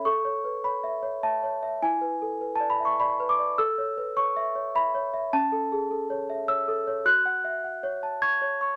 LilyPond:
\new Staff \with { instrumentName = "Celesta" } { \time 3/4 \key a \major \tempo 4 = 103 << { cis'''4 b''4 a''4 | gis''4~ gis''16 a''16 b''16 cis'''16 b''8 d'''8 | e'''4 cis'''4 b''4 | a''2 e'''4 |
\key fis \minor fis'''2 gis'''4 | } \\ { \tuplet 3/2 { a'8 cis''8 b'8 cis''8 e''8 cis''8 e''8 cis''8 e''8 } | \tuplet 3/2 { e'8 b'8 a'8 b'8 d''8 e''8 d''8 b'8 d''8 } | \tuplet 3/2 { a'8 cis''8 b'8 cis''8 e''8 cis''8 e''8 cis''8 e''8 } | \tuplet 3/2 { cis'8 a'8 gis'8 a'8 cis''8 e''8 cis''8 a'8 cis''8 } |
\tuplet 3/2 { fis'8 fis''8 e''8 fis''8 cis''8 a''8 cis'''8 cis''8 cis'''8 } | } >> }